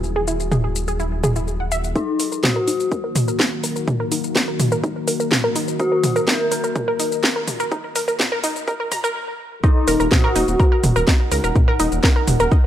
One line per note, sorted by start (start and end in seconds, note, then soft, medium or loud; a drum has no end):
0.00 1.93 D#1 medium
0.00 1.92 E4 medium
0.00 1.92 F#4 medium
0.00 1.92 G#4 medium
0.00 shaker soft
0.16 0.21 G#4 loud
0.28 0.35 E4 medium
0.28 shaker medium
0.40 shaker soft
0.52 0.55 G#4 medium
0.52 mid tom medium
0.52 shaker soft
0.64 0.69 G#4 medium
0.76 shaker medium
0.88 0.93 G#4 medium
0.88 shaker soft
1.00 1.07 E4 medium
1.00 shaker soft
1.24 1.29 G#4 loud
1.24 mid tom medium
1.24 shaker medium
1.36 1.41 E4 medium
1.36 shaker soft
1.48 shaker soft
1.60 1.65 F#5 medium
1.72 1.79 E5 loud
1.72 shaker medium
1.84 shaker soft
1.96 9.12 D#3 medium
1.96 9.12 A#3 medium
1.96 2.03 D#4 medium
1.96 2.40 D#4 loud
1.96 9.12 F#4 medium
1.96 kick loud
1.96 shaker soft
2.20 2.23 A#4 medium
2.20 open hi-hat loud
2.20 shaker medium
2.32 2.37 A#4 medium
2.32 shaker soft
2.44 3.30 F#4 medium
2.44 3.30 F#4 loud
2.44 kick loud
2.44 snare loud
2.44 mid tom medium
2.44 shaker soft
2.56 2.61 A#4 loud
2.68 2.75 D#4 medium
2.68 open hi-hat medium
2.68 shaker medium
2.80 shaker soft
2.92 2.95 A#4 medium
2.92 kick loud
2.92 shaker soft
3.04 3.09 A#4 medium
3.16 mid tom medium
3.16 open hi-hat loud
3.16 shaker medium
3.28 3.33 A#4 medium
3.28 shaker soft
3.40 3.47 D#4 medium
3.40 kick loud
3.40 snare loud
3.40 shaker soft
3.64 3.67 A#4 medium
3.64 open hi-hat medium
3.64 shaker medium
3.76 3.81 A#4 medium
3.76 shaker soft
3.88 kick loud
3.88 mid tom medium
3.88 shaker soft
4.00 4.05 A#4 loud
4.12 4.19 D#4 medium
4.12 open hi-hat loud
4.12 shaker medium
4.24 shaker soft
4.36 4.39 A#4 medium
4.36 kick loud
4.36 snare loud
4.36 shaker soft
4.48 4.53 A#4 medium
4.60 mid tom medium
4.60 open hi-hat loud
4.60 shaker medium
4.72 4.77 A#4 loud
4.72 shaker soft
4.84 4.91 D#4 medium
4.84 kick loud
4.84 shaker soft
5.08 5.11 A#4 medium
5.08 open hi-hat loud
5.08 shaker medium
5.20 5.25 A#4 medium
5.20 shaker soft
5.32 kick loud
5.32 snare loud
5.32 mid tom medium
5.32 shaker soft
5.44 5.49 A#4 loud
5.56 5.63 D#4 medium
5.56 open hi-hat medium
5.56 shaker medium
5.68 shaker soft
5.80 6.24 F#4 loud
5.80 5.83 A#4 medium
5.80 kick loud
5.80 shaker soft
5.92 5.97 A#4 medium
6.04 mid tom medium
6.04 open hi-hat loud
6.04 shaker medium
6.16 6.21 A#4 loud
6.16 shaker soft
6.27 6.35 D#4 medium
6.27 7.14 A#4 loud
6.27 7.14 A#4 medium
6.27 kick loud
6.27 snare loud
6.27 shaker soft
6.51 6.55 A#4 medium
6.51 open hi-hat loud
6.51 shaker medium
6.64 6.69 A#4 medium
6.64 shaker soft
6.76 kick loud
6.76 mid tom medium
6.76 shaker soft
6.88 6.93 A#4 loud
6.99 7.07 D#4 medium
6.99 open hi-hat loud
6.99 shaker medium
7.12 shaker soft
7.24 7.27 A#4 medium
7.24 kick loud
7.24 snare loud
7.24 shaker soft
7.36 7.41 A#4 medium
7.48 mid tom medium
7.48 open hi-hat medium
7.48 shaker medium
7.60 7.65 A#4 loud
7.60 shaker soft
7.72 7.79 D#4 medium
7.72 kick loud
7.72 shaker soft
7.96 7.99 A#4 medium
7.96 open hi-hat loud
7.96 shaker medium
8.08 8.13 A#4 medium
8.08 shaker soft
8.20 kick loud
8.20 snare loud
8.20 mid tom medium
8.20 shaker soft
8.32 8.37 A#4 loud
8.44 8.51 D#4 medium
8.44 open hi-hat loud
8.44 shaker medium
8.56 shaker soft
8.68 8.71 A#4 medium
8.68 kick loud
8.68 shaker soft
8.80 8.85 A#4 medium
8.92 8.95 A#5 medium
8.92 mid tom medium
8.92 open hi-hat loud
8.92 shaker medium
9.04 9.09 A#4 loud
9.04 shaker soft
9.64 9.71 D#4 medium
9.64 10.08 D#4 loud
9.64 12.67 D#4 medium
9.64 12.67 A#4 medium
9.64 9.71 D#5 medium
9.64 12.67 F#5 loud
9.64 kick loud
9.64 shaker soft
9.88 9.95 D#1 loud
9.88 9.91 A#4 medium
9.88 9.91 A#5 medium
9.88 open hi-hat loud
9.88 shaker medium
10.00 10.07 D#1 medium
10.00 10.05 A#4 medium
10.00 10.05 A#5 medium
10.00 shaker soft
10.12 10.98 F#4 loud
10.12 kick loud
10.12 snare loud
10.12 mid tom loud
10.12 shaker soft
10.24 10.29 A#4 loud
10.24 10.29 A#5 medium
10.36 10.43 D#1 medium
10.36 10.43 D#4 medium
10.36 10.43 D#5 medium
10.36 open hi-hat loud
10.36 shaker medium
10.48 10.55 D#1 medium
10.48 shaker soft
10.60 10.63 A#4 medium
10.60 10.63 A#5 medium
10.60 kick loud
10.60 shaker soft
10.72 10.77 A#4 medium
10.72 10.77 A#5 medium
10.84 10.91 D#1 loud
10.84 mid tom medium
10.84 open hi-hat loud
10.84 shaker medium
10.96 11.03 D#1 medium
10.96 11.01 A#4 loud
10.96 11.01 A#5 medium
10.96 shaker soft
11.08 11.15 D#4 medium
11.08 11.15 D#5 medium
11.08 kick loud
11.08 snare loud
11.08 shaker soft
11.32 11.39 C#2 loud
11.32 11.35 A#4 medium
11.32 11.35 A#5 medium
11.32 open hi-hat loud
11.32 shaker medium
11.44 11.51 D#1 medium
11.44 11.49 A#4 medium
11.44 11.49 A#5 medium
11.44 shaker soft
11.56 kick loud
11.56 mid tom medium
11.56 shaker soft
11.68 11.73 A#4 loud
11.68 11.73 A#5 medium
11.80 11.87 D#1 loud
11.80 11.87 D#4 medium
11.80 11.87 D#5 medium
11.80 open hi-hat loud
11.80 shaker medium
11.92 11.99 D#1 medium
11.92 shaker soft
12.04 12.07 A#4 medium
12.04 12.07 A#5 medium
12.04 kick loud
12.04 snare loud
12.04 shaker soft
12.16 12.21 A#4 medium
12.16 12.21 A#5 medium
12.28 12.35 D#1 medium
12.28 mid tom medium
12.28 open hi-hat loud
12.28 shaker medium
12.40 12.47 D#1 medium
12.40 12.45 A#4 loud
12.40 12.45 A#5 medium
12.40 shaker soft
12.52 12.59 D#4 medium
12.52 12.59 D#5 medium
12.52 kick loud
12.52 shaker soft